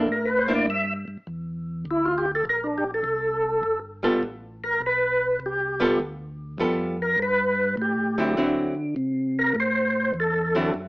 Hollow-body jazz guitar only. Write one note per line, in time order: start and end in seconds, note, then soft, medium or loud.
0.48 0.66 A#3 medium
0.48 0.66 D4 medium
0.48 0.66 E4 medium
4.03 4.21 G3 medium
4.03 4.21 B3 medium
4.03 4.21 F4 medium
4.03 4.21 A4 medium
5.80 5.98 G3 medium
5.80 5.98 B3 medium
5.80 5.98 F4 medium
5.80 5.99 A4 medium
6.59 6.96 G3 medium
6.59 6.96 B3 medium
6.59 6.96 F4 medium
6.59 6.96 A4 medium
8.18 8.36 D3 medium
8.18 8.36 F#3 medium
8.18 8.37 C4 medium
8.18 8.38 E4 medium
8.37 8.73 D3 medium
8.37 8.73 F#3 medium
8.37 8.74 C4 medium
8.37 8.74 E4 medium
10.55 10.72 D3 medium
10.55 10.72 F#3 medium
10.55 10.72 C4 medium
10.55 10.72 E4 medium